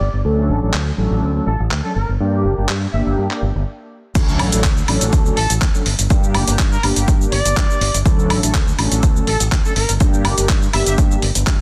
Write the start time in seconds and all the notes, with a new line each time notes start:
Already playing: D5
0.00 G1
0.13 G1
0.24 D2 F#3 A3 C#4 D4 A4
0.49 A1
0.62 A1 F#3 A3 C#4 D4 A4
0.74 D2, clap
0.97 A1 F#3 A3 C#4 D4 A4
1.11 A1
1.22 D2
1.35 F#3 A3 C#4 D4 A4
1.47 A1 A4
1.60 A1
1.71 D2, clap
1.84 F#3 A3 C#4 D4 A4
1.95 G1 A#4
2.09 G1
2.20 G2 A#3 D4 G4
2.45 G1
2.57 G1 A#3 D4 G4
2.69 G2, clap
2.93 G1 A#3 D4 G4 E5
3.06 G1 E5
3.18 G2
3.30 A#3 D4 G4, clap
3.42 G1
3.55 G1
4.15 D2 F#3 A3 C#4 D4 A4, kick, closed hi-hat, crash, impact, cabasa
4.28 cabasa
4.39 A1, open hi-hat, high woodblock
4.52 A1 F#3 A3 C#4 D4 A4, closed hi-hat, cabasa
4.64 D2, kick, clap, closed hi-hat, cabasa
4.77 cabasa
4.88 A1 F#3 A3 C#4 D4 A4, open hi-hat, high woodblock
5.01 A1, closed hi-hat, cabasa
5.13 kick, closed hi-hat, cabasa
5.25 F#3 A3 C#4 D4 A4, cabasa
5.37 A1 A4, open hi-hat
5.50 A1, closed hi-hat, cabasa
5.61 kick, clap, closed hi-hat, cabasa
5.74 F#3 A3 C#4 D4 A4, cabasa
5.86 G1, open hi-hat
5.99 G1, closed hi-hat, cabasa
6.10 G2 A#3 D4 G4, kick, closed hi-hat, cabasa
6.24 cabasa
6.34 G1, open hi-hat, high woodblock
6.47 G1 A#3 D4 G4, closed hi-hat, cabasa
6.59 G2, kick, clap, closed hi-hat, cabasa
6.72 A#4, cabasa
6.83 G1 A#3 D4 G4, open hi-hat, high woodblock
6.96 G1, closed hi-hat, cabasa
7.08 G2, kick, closed hi-hat, cabasa
7.21 A#3 D4 G4, cabasa
7.32 G1 D5, open hi-hat
7.45 G1, closed hi-hat, cabasa
7.57 G2, kick, clap, closed hi-hat, cabasa
7.70 A#3 D4 G4, cabasa
7.81 G1, open hi-hat
7.94 G1, closed hi-hat, cabasa
8.05 D2 F#3 A3 C#4 D4 A4, kick, closed hi-hat, cabasa
8.19 cabasa
8.30 A1, open hi-hat, high woodblock
8.43 A1 F#3 A3 C#4 D4 A4, closed hi-hat, cabasa
8.54 D2, kick, clap, cabasa
8.68 cabasa
8.78 A1 F#3 A3 C#4 D4 A4, open hi-hat, high woodblock
8.91 A1, closed hi-hat, cabasa
9.03 D2, kick, closed hi-hat, cabasa
9.16 F#3 A3 C#4 D4 A4, cabasa
9.27 A1 A4, open hi-hat
9.40 A1, closed hi-hat, cabasa
9.52 kick, clap, closed hi-hat, cabasa
9.65 F#3 A3 C#4 D4 A4, cabasa
9.76 G1 A#4, open hi-hat
9.89 G1, closed hi-hat, cabasa
10.00 G2 A#3 D4 G4, kick, closed hi-hat, cabasa
10.14 cabasa
10.25 G1, open hi-hat, high woodblock
10.38 G1 A#3 D4 G4, closed hi-hat, cabasa
10.49 G2, kick, clap, closed hi-hat, cabasa
10.62 cabasa
10.73 G1 A#3 D4 G4 E5, open hi-hat, high woodblock
10.86 G1 E5, closed hi-hat, cabasa
10.98 G2, kick, closed hi-hat, cabasa
11.11 A#3 D4 G4, cabasa
11.22 G1, open hi-hat
11.35 G1, closed hi-hat, cabasa
11.47 G2, kick, clap, closed hi-hat, cabasa